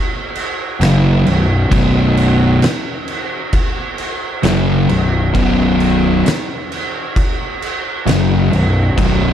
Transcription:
0.35 crash
0.80 picked electric bass F#1, distorted electric guitar F#2 C#3 F#3, snare, crash
1.25 picked electric bass B0, distorted electric guitar B1 F#2, crash
1.71 picked electric bass B0, distorted electric guitar B1 F#2 B2, kick, crash
2.17 crash
2.62 snare, crash
3.08 crash
3.53 kick, crash
3.98 crash
4.43 picked electric bass F#1, distorted electric guitar F#2 C#3 F#3, snare, crash
4.89 picked electric bass B0, distorted electric guitar B1 F#2, crash
5.33 picked electric bass B0, distorted electric guitar B1 F#2 B2, kick, crash
5.80 crash
6.26 snare, crash
6.72 crash
7.16 kick, crash
7.62 crash
8.06 picked electric bass F#1, distorted electric guitar F#2 C#3 F#3, snare, crash
8.52 picked electric bass B0, distorted electric guitar B1 F#2, crash
8.97 picked electric bass B0, distorted electric guitar B1 F#2 B2, kick, crash

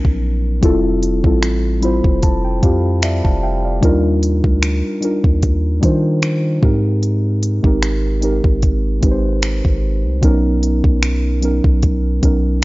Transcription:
Already playing: synth keys F#3 B3 C#4 D#4 A#4
0.05 808-style bass A#1, kick
0.61 808-style bass F1, synth keys G3 C4 E4 F4 A4, kick, closed hi-hat
1.03 closed hi-hat
1.23 808-style bass A1, synth keys G3 C4 E4 F4 A4, kick
1.43 finger snap, closed hi-hat
1.81 synth keys G3 C4 E4 F4 C5 B5, closed hi-hat
2.04 808-style bass F1, kick
2.23 synth keys A5, kick, closed hi-hat
2.44 synth keys G5
2.61 808-style bass F2, synth keys G3 C4 F4 G4 F5, kick, closed hi-hat
3.02 synth keys D5 E5 F5, finger snap, closed hi-hat
3.24 808-style bass F1, synth keys F5 A5, kick
3.43 synth keys E5 F5 G5
3.64 synth keys D5 F5
3.81 808-style bass D#2, synth keys G3 D4 D#4 F4 A#4, kick, closed hi-hat
4.23 closed hi-hat
4.44 808-style bass D2, kick
4.63 finger snap, closed hi-hat
5.01 synth keys G3 D4 D#4 F4 A#4, closed hi-hat
5.24 808-style bass D#2, kick
5.42 kick, closed hi-hat
5.81 808-style bass D#3, synth keys G3 D4 D#4 F4 C5, kick, closed hi-hat
6.22 finger snap, closed hi-hat
6.61 808-style bass G#2, synth keys G#3 C4 D#4 G4 A#4, kick
7.03 closed hi-hat
7.43 closed hi-hat
7.62 808-style bass G#1, synth keys G#3 C4 D#4 G4 A#4, kick
7.83 finger snap, closed hi-hat
8.21 synth keys G#3 C4 D#4 G4 A#4, closed hi-hat
8.44 808-style bass G#1, kick
8.62 kick, closed hi-hat
9.01 808-style bass G#1, synth keys G#3 C4 D#4 G4 B4, kick, closed hi-hat
9.11 synth keys C5
9.42 finger snap, closed hi-hat
9.65 808-style bass G#1, kick
10.04 808-style bass C2
10.21 808-style bass B1, synth keys F#3 B3 C#4 D#4 A#4, kick, closed hi-hat
10.63 closed hi-hat
10.84 808-style bass B1, kick
11.03 finger snap, closed hi-hat
11.41 synth keys F#3 B3 C#4 D#4, closed hi-hat
11.45 synth keys A#4
11.64 808-style bass B1, kick
11.83 kick, closed hi-hat
12.21 808-style bass B1, synth keys F#3 B3 C#4 D#4 A#4, kick, closed hi-hat

